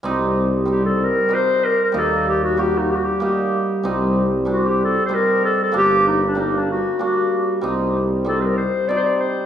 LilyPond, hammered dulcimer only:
\new Staff \with { instrumentName = "Hammered dulcimer" } { \time 3/4 \tempo 4 = 95 <g c' ees'>8 r8 <g c' ees'>8 r8 <g c' ees'>8 r8 | <g bes ees'>8 r8 <g bes fis'>8 r8 <g bes ees'>8 r8 | <g c' ees'>8 r8 <g c' d'>8 r8 <g c' ees'>8 r8 | <g bes d'>8 r8 <g bes d'>8 r8 <g bes d'>8 r8 |
<g c' ees'>8 r8 <g c' ees'>8 r8 <g c' ees'>8 r8 | }